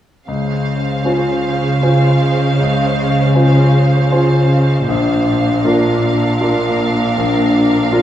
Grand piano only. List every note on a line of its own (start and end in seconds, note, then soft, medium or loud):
0.28 1.04 C#2 soft
1.05 1.79 C#4 soft
1.05 1.79 F4 soft
1.05 1.79 C5 soft
1.82 2.55 C#4 soft
1.82 2.56 F4 soft
1.82 2.56 C5 soft
2.60 3.34 C#2 soft
3.34 4.07 C#4 soft
3.34 4.08 F4 soft
3.34 4.08 C5 soft
4.11 4.84 C#4 soft
4.11 4.84 F4 soft
4.11 4.84 C5 soft
4.89 5.63 A#1 soft
5.64 6.37 D4 soft
5.64 6.38 F4 soft
5.64 6.38 A#4 soft
6.41 7.13 D4 soft
6.41 7.13 F4 soft
6.41 7.13 A#4 soft
7.18 7.90 A#1 soft
7.92 8.02 D4 soft
7.92 8.02 F4 soft
7.92 8.02 A#4 soft